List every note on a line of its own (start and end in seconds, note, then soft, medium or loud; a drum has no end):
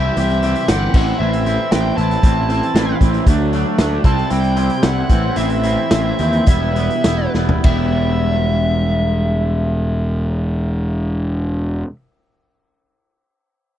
0.00 0.15 E3 loud
0.00 0.16 C4 medium
0.00 0.16 E4 loud
0.00 0.16 G4 loud
0.00 0.71 E5 medium
0.16 0.53 C2 loud
0.16 0.42 E3 medium
0.16 0.42 C4 loud
0.16 0.43 E4 medium
0.16 0.43 G4 medium
0.16 closed hi-hat medium
0.30 closed hi-hat soft
0.43 0.67 E3 medium
0.43 0.68 C4 medium
0.43 0.68 E4 medium
0.43 0.69 G4 medium
0.43 closed hi-hat medium
0.56 closed hi-hat medium
0.68 0.87 G1 medium
0.68 0.92 E3 loud
0.68 0.93 C4 loud
0.68 0.93 E4 loud
0.68 0.93 G4 loud
0.68 1.16 F#5 medium
0.68 snare loud
0.68 closed hi-hat loud
0.94 1.12 A1 medium
0.94 1.19 E3 medium
0.94 1.19 C4 loud
0.94 1.20 E4 loud
0.94 kick loud
0.94 crash loud
1.19 1.56 A1 loud
1.19 1.44 E3 medium
1.19 1.45 C4 medium
1.19 1.45 E4 loud
1.19 1.72 E5 medium
1.33 closed hi-hat medium
1.45 1.70 E3 medium
1.45 1.71 C4 medium
1.45 1.71 E4 medium
1.45 closed hi-hat medium
1.71 1.90 A1 medium
1.71 1.96 E3 medium
1.71 1.97 C4 medium
1.71 1.97 E4 loud
1.71 1.97 G5 loud
1.71 snare loud
1.71 closed hi-hat loud
1.97 2.16 A1 loud
1.97 2.22 E3 medium
1.97 2.22 C4 medium
1.97 2.23 E4 loud
1.97 2.96 A5 loud
1.97 closed hi-hat medium
2.11 snare soft
2.11 closed hi-hat soft
2.23 2.60 A1 medium
2.23 2.47 E3 medium
2.23 2.48 C4 loud
2.23 2.48 E4 loud
2.23 kick loud
2.23 closed hi-hat loud
2.49 2.74 E3 medium
2.49 2.74 C4 medium
2.49 2.74 E4 loud
2.49 closed hi-hat medium
2.63 closed hi-hat soft
2.75 2.93 A1 medium
2.75 2.99 E3 loud
2.75 3.00 C4 loud
2.75 3.00 E4 loud
2.75 snare loud
2.75 closed hi-hat medium
3.00 3.19 A1 loud
3.00 3.24 E3 medium
3.00 3.25 C4 medium
3.00 3.25 E4 medium
3.00 kick medium
3.00 closed hi-hat medium
3.14 closed hi-hat soft
3.27 3.63 D2 loud
3.27 3.52 F#3 medium
3.27 3.52 A3 medium
3.27 3.53 D4 medium
3.27 kick loud
3.27 closed hi-hat loud
3.53 3.77 F#3 medium
3.53 3.77 A3 medium
3.53 3.78 D4 medium
3.53 closed hi-hat medium
3.78 3.97 D2 medium
3.78 4.02 F#3 medium
3.78 4.02 A3 medium
3.78 4.03 D4 loud
3.78 snare loud
3.78 closed hi-hat loud
4.04 4.23 C2 loud
4.04 4.29 G3 loud
4.04 4.29 C4 loud
4.04 4.31 E4 loud
4.04 4.31 A5 loud
4.04 kick loud
4.04 closed hi-hat medium
4.17 snare soft
4.30 4.68 C2 medium
4.30 4.55 G3 medium
4.30 4.55 C4 medium
4.30 4.57 E4 loud
4.30 4.84 G5 loud
4.30 closed hi-hat loud
4.44 closed hi-hat soft
4.56 4.81 G3 medium
4.56 4.82 C4 loud
4.56 4.83 E4 medium
4.56 closed hi-hat medium
4.70 closed hi-hat medium
4.82 5.02 C2 loud
4.82 5.08 G3 medium
4.82 5.08 C4 medium
4.82 5.10 E4 loud
4.82 5.39 F#5 medium
4.82 snare loud
4.82 closed hi-hat loud
5.09 5.29 A1 medium
5.09 5.35 E3 loud
5.09 5.36 C4 loud
5.09 5.36 E4 loud
5.09 kick loud
5.09 closed hi-hat medium
5.36 5.75 A1 medium
5.36 5.62 E3 medium
5.36 5.63 C4 medium
5.36 5.63 E4 loud
5.36 6.47 E5 medium
5.36 closed hi-hat loud
5.50 closed hi-hat medium
5.63 5.90 E3 medium
5.63 5.91 C4 loud
5.63 5.91 E4 loud
5.63 closed hi-hat medium
5.91 6.11 A1 medium
5.91 6.18 E3 medium
5.91 6.18 C4 medium
5.91 6.19 E4 medium
5.91 snare loud
5.91 closed hi-hat loud
6.19 6.39 D#2 medium
6.19 6.46 E3 medium
6.19 6.46 C4 medium
6.19 6.46 E4 loud
6.19 closed hi-hat medium
6.33 closed hi-hat soft
6.46 6.88 E1 medium
6.46 6.74 G3 loud
6.46 6.74 B3 medium
6.46 6.75 E4 loud
6.46 7.31 E5 medium
6.46 kick loud
6.46 closed hi-hat loud
6.75 7.03 G3 medium
6.75 7.04 B3 medium
6.75 7.05 E4 medium
6.75 closed hi-hat medium
6.90 closed hi-hat soft
7.04 7.26 E1 medium
7.04 7.34 G3 medium
7.04 7.35 B3 loud
7.04 7.35 E4 loud
7.04 snare loud
7.04 closed hi-hat loud
7.34 7.56 E1 medium
7.34 7.63 G3 medium
7.34 7.64 B3 medium
7.34 7.64 E4 medium
7.34 snare medium
7.49 floor tom loud
7.64 11.82 E1 loud
7.64 11.86 G3 medium
7.64 11.89 B3 medium
7.64 11.83 E5 medium
7.64 kick loud
7.64 ride bell medium
7.68 11.90 E4 loud